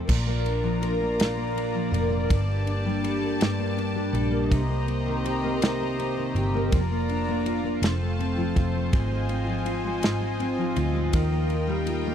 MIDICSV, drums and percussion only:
0, 0, Header, 1, 2, 480
1, 0, Start_track
1, 0, Key_signature, -2, "major"
1, 0, Tempo, 736196
1, 59, Time_signature, 6, 3, 24, 8
1, 7920, End_track
2, 0, Start_track
2, 0, Title_t, "Drums"
2, 58, Note_on_c, 9, 36, 100
2, 58, Note_on_c, 9, 49, 101
2, 123, Note_off_c, 9, 36, 0
2, 123, Note_off_c, 9, 49, 0
2, 298, Note_on_c, 9, 51, 43
2, 363, Note_off_c, 9, 51, 0
2, 538, Note_on_c, 9, 51, 45
2, 603, Note_off_c, 9, 51, 0
2, 780, Note_on_c, 9, 51, 71
2, 790, Note_on_c, 9, 38, 103
2, 845, Note_off_c, 9, 51, 0
2, 855, Note_off_c, 9, 38, 0
2, 1027, Note_on_c, 9, 51, 44
2, 1092, Note_off_c, 9, 51, 0
2, 1265, Note_on_c, 9, 51, 49
2, 1331, Note_off_c, 9, 51, 0
2, 1502, Note_on_c, 9, 36, 111
2, 1502, Note_on_c, 9, 51, 81
2, 1567, Note_off_c, 9, 51, 0
2, 1568, Note_off_c, 9, 36, 0
2, 1742, Note_on_c, 9, 51, 43
2, 1807, Note_off_c, 9, 51, 0
2, 1984, Note_on_c, 9, 51, 43
2, 2049, Note_off_c, 9, 51, 0
2, 2222, Note_on_c, 9, 51, 67
2, 2232, Note_on_c, 9, 38, 111
2, 2287, Note_off_c, 9, 51, 0
2, 2297, Note_off_c, 9, 38, 0
2, 2467, Note_on_c, 9, 51, 40
2, 2532, Note_off_c, 9, 51, 0
2, 2702, Note_on_c, 9, 51, 45
2, 2768, Note_off_c, 9, 51, 0
2, 2944, Note_on_c, 9, 36, 106
2, 2946, Note_on_c, 9, 51, 72
2, 3009, Note_off_c, 9, 36, 0
2, 3011, Note_off_c, 9, 51, 0
2, 3182, Note_on_c, 9, 51, 40
2, 3247, Note_off_c, 9, 51, 0
2, 3426, Note_on_c, 9, 51, 48
2, 3492, Note_off_c, 9, 51, 0
2, 3665, Note_on_c, 9, 51, 72
2, 3675, Note_on_c, 9, 38, 111
2, 3730, Note_off_c, 9, 51, 0
2, 3740, Note_off_c, 9, 38, 0
2, 3909, Note_on_c, 9, 51, 44
2, 3974, Note_off_c, 9, 51, 0
2, 4146, Note_on_c, 9, 51, 43
2, 4211, Note_off_c, 9, 51, 0
2, 4383, Note_on_c, 9, 51, 73
2, 4385, Note_on_c, 9, 36, 120
2, 4448, Note_off_c, 9, 51, 0
2, 4450, Note_off_c, 9, 36, 0
2, 4625, Note_on_c, 9, 51, 36
2, 4690, Note_off_c, 9, 51, 0
2, 4864, Note_on_c, 9, 51, 43
2, 4929, Note_off_c, 9, 51, 0
2, 5103, Note_on_c, 9, 51, 70
2, 5113, Note_on_c, 9, 38, 93
2, 5168, Note_off_c, 9, 51, 0
2, 5178, Note_off_c, 9, 38, 0
2, 5349, Note_on_c, 9, 51, 37
2, 5414, Note_off_c, 9, 51, 0
2, 5583, Note_on_c, 9, 36, 78
2, 5584, Note_on_c, 9, 51, 40
2, 5649, Note_off_c, 9, 36, 0
2, 5649, Note_off_c, 9, 51, 0
2, 5822, Note_on_c, 9, 51, 73
2, 5824, Note_on_c, 9, 36, 115
2, 5888, Note_off_c, 9, 51, 0
2, 5889, Note_off_c, 9, 36, 0
2, 6058, Note_on_c, 9, 51, 41
2, 6123, Note_off_c, 9, 51, 0
2, 6297, Note_on_c, 9, 51, 44
2, 6362, Note_off_c, 9, 51, 0
2, 6538, Note_on_c, 9, 51, 64
2, 6548, Note_on_c, 9, 38, 93
2, 6603, Note_off_c, 9, 51, 0
2, 6613, Note_off_c, 9, 38, 0
2, 6781, Note_on_c, 9, 51, 40
2, 6846, Note_off_c, 9, 51, 0
2, 7017, Note_on_c, 9, 51, 47
2, 7083, Note_off_c, 9, 51, 0
2, 7258, Note_on_c, 9, 51, 76
2, 7261, Note_on_c, 9, 36, 109
2, 7323, Note_off_c, 9, 51, 0
2, 7326, Note_off_c, 9, 36, 0
2, 7496, Note_on_c, 9, 51, 38
2, 7561, Note_off_c, 9, 51, 0
2, 7737, Note_on_c, 9, 51, 47
2, 7802, Note_off_c, 9, 51, 0
2, 7920, End_track
0, 0, End_of_file